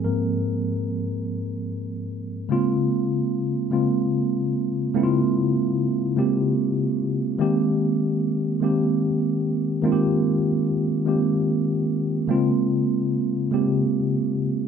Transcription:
0.00 0.05 G#2 soft
0.00 0.05 F3 soft
0.00 2.49 G#3 medium
0.00 0.06 A#3 medium
0.00 0.06 C4 medium
0.00 2.50 G#4 medium
0.00 2.50 A4 medium
0.00 0.04 A#4 medium
0.04 0.58 G#2 soft
0.04 0.59 F3 soft
0.04 1.64 A#3 medium
0.04 0.59 C4 medium
0.04 1.63 A#4 medium
2.49 3.56 C#3 medium
2.49 3.57 G#3 medium
2.49 3.57 A#3 medium
2.49 3.58 C4 medium
2.49 3.58 F4 loud
3.70 4.78 C#3 medium
3.70 4.79 G#3 medium
3.70 4.79 A#3 medium
3.70 4.79 C4 medium
3.70 4.80 F4 medium
4.94 6.01 C#3 loud
4.94 6.02 G#3 medium
4.94 6.02 A#3 medium
4.94 6.02 C4 loud
4.94 5.02 E4 medium
5.03 6.06 F4 loud
6.16 7.23 C#3 medium
6.16 7.24 G#3 medium
6.16 7.24 A#3 medium
6.16 7.25 C4 medium
6.16 7.25 G4 medium
7.38 8.46 D#3 loud
7.38 8.46 G#3 loud
7.38 8.47 A#3 medium
7.38 8.47 C4 medium
7.38 8.47 G4 loud
8.60 9.68 D#3 medium
8.60 9.69 G#3 medium
8.60 9.69 A#3 medium
8.60 9.69 C4 medium
8.60 9.70 G4 medium
9.82 10.90 D#3 loud
9.82 10.91 G#3 medium
9.82 10.91 A#3 medium
9.82 10.91 C4 medium
9.82 9.91 F4 medium
9.92 10.95 G4 loud
11.05 12.13 D#3 medium
11.05 12.14 G#3 medium
11.05 12.14 A#3 medium
11.05 12.14 C4 medium
11.05 12.15 G4 medium
12.27 13.35 C#3 loud
12.27 13.36 G#3 medium
12.27 13.36 A#3 loud
12.27 13.37 C4 medium
12.27 13.37 F4 loud
13.51 14.58 C#3 medium
13.51 14.59 G#3 medium
13.51 14.59 A#3 medium
13.51 14.60 C4 medium
13.51 14.60 G4 medium

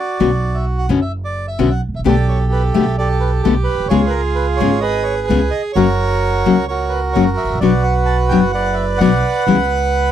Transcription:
0.00 0.86 F#4 medium
0.00 0.57 D5 medium
0.20 0.86 B1 medium
0.20 0.29 B2 medium
0.20 0.29 D3 medium
0.20 0.29 B3 medium
0.20 0.29 C#4 medium
0.20 0.29 F#4 medium
0.55 0.65 E5 medium
0.79 0.89 F#5 medium
0.89 1.56 F#1 medium
0.89 0.98 B2 medium
0.89 0.98 D3 medium
0.89 0.99 B3 medium
0.89 0.99 C#4 medium
0.89 0.99 F#4 medium
1.02 1.12 E5 medium
1.25 1.46 D5 medium
1.48 1.72 E5 medium
1.59 1.79 B1 medium
1.59 1.68 B2 medium
1.59 1.68 D3 medium
1.59 1.68 B3 medium
1.59 1.68 C#4 medium
1.59 1.68 F#4 medium
1.70 1.81 F#5 medium
1.89 1.94 G#1 medium
1.94 1.99 A1 medium
1.94 2.01 E5 medium
1.99 2.05 A#1 medium
2.04 2.72 B1 loud
2.04 2.14 B2 medium
2.04 2.14 D3 medium
2.04 2.15 A3 medium
2.04 2.15 B3 medium
2.04 2.15 G4 loud
2.04 2.30 D5 medium
2.08 2.96 G4 medium
2.08 2.96 A4 medium
2.28 2.39 C#5 medium
2.52 2.63 B4 medium
2.74 2.84 B2 medium
2.74 2.84 D3 medium
2.74 2.84 A3 medium
2.74 2.84 B3 medium
2.74 2.84 G4 medium
2.74 2.96 E5 medium
2.98 3.88 G4 medium
2.98 3.41 A4 medium
2.98 3.08 D5 medium
3.20 3.31 B4 medium
3.43 3.65 B1 medium
3.43 3.54 B2 medium
3.43 3.54 D3 medium
3.43 3.54 A3 medium
3.43 3.54 B3 medium
3.43 3.54 G4 medium
3.43 3.54 A4 medium
3.64 3.87 B4 medium
3.75 3.80 A#1 medium
3.80 3.85 B1 medium
3.86 3.91 C2 medium
3.86 4.06 C#5 medium
3.90 4.57 C#2 loud
3.90 4.00 C#3 medium
3.90 4.00 G#3 medium
3.90 4.00 B3 loud
3.90 4.80 F4 medium
3.90 4.00 F4 medium
3.90 4.79 G#4 medium
3.90 4.00 G#4 loud
4.07 4.21 A#4 medium
4.07 4.13 B4 medium
4.35 4.46 B4 medium
4.57 5.27 G#1 medium
4.57 4.70 C#3 medium
4.57 4.70 G#3 medium
4.57 4.70 B3 medium
4.57 4.83 C#5 medium
4.61 4.70 F4 medium
4.61 4.70 G#4 medium
4.80 5.72 G#4 medium
4.80 5.26 B4 medium
4.80 5.04 D#5 medium
5.03 5.15 C#5 medium
5.27 5.49 C#2 medium
5.27 5.39 C#3 medium
5.27 5.39 G#3 medium
5.27 5.39 B3 medium
5.27 5.39 F4 medium
5.27 5.39 G#4 medium
5.27 5.50 B4 medium
5.51 5.62 D#5 medium
5.73 6.42 F#1 medium
5.73 5.85 C#3 medium
5.73 5.85 F#3 medium
5.73 5.85 A#3 medium
5.73 6.65 F#4 medium
5.73 6.65 A#4 medium
5.73 6.66 C#5 loud
5.77 5.86 C#4 medium
5.77 5.86 F#4 medium
6.46 7.12 C#2 medium
6.46 6.55 C#3 medium
6.46 6.55 F#3 medium
6.46 6.55 A#3 medium
6.46 6.55 C#4 medium
6.46 6.55 F#4 medium
6.68 7.59 F#4 medium
6.68 7.59 A#4 medium
6.68 6.93 C#5 medium
6.89 7.00 B4 medium
7.13 7.35 F#1 medium
7.13 7.25 C#3 medium
7.13 7.25 F#3 medium
7.13 7.25 A#3 medium
7.13 7.25 C#4 medium
7.13 7.25 F#4 medium
7.13 7.24 C#5 medium
7.37 7.60 E5 medium
7.44 7.50 G#1 soft
7.50 7.55 A1 medium
7.55 7.60 A#1 medium
7.60 8.28 B1 medium
7.60 7.71 B2 medium
7.60 7.71 F#3 medium
7.60 7.71 B3 medium
7.60 7.71 D4 medium
7.60 7.72 F#4 medium
7.60 8.52 F#4 medium
7.60 8.52 B4 medium
7.60 7.83 D5 medium
7.83 7.94 F#5 medium
8.06 8.17 A5 loud
8.29 8.97 F#1 medium
8.29 8.41 B2 medium
8.29 8.41 F#3 medium
8.29 8.41 B3 medium
8.29 8.41 D4 medium
8.29 8.41 F#4 medium
8.29 8.40 G5 loud
8.52 8.99 B4 medium
8.52 8.99 D5 medium
8.52 8.75 F#5 medium
8.73 8.85 E5 medium
8.98 9.20 B1 medium
8.98 9.10 B2 medium
8.98 9.10 F#3 medium
8.98 9.10 B3 medium
8.98 9.10 D4 medium
8.98 9.10 F#4 medium
8.98 10.12 B4 medium
8.98 9.44 D5 medium
8.98 10.12 F#5 loud
9.47 10.12 C#2 loud
9.47 9.56 C#3 medium
9.47 9.56 E3 medium
9.47 9.56 G3 medium
9.47 9.57 B3 medium
9.47 9.57 E4 medium

